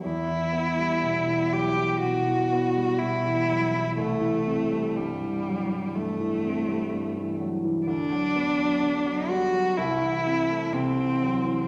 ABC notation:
X:1
M:4/4
L:1/16
Q:1/4=62
K:Em
V:1 name="Cello"
E6 G2 F4 E4 | A,4 G,4 A,6 z2 | D6 F2 E4 C4 |]
V:2 name="Grand piano" clef=bass
E,, E, B, G, B,, E, F, E, B,, E, B, G, B,, E, F, E, | C,, E, C G, G,, E, F, E, G,, E, C G, G,, E, F, E, | D,, F, B, F, D, F, G, F, C,, E, C A, C, E, F, E, |]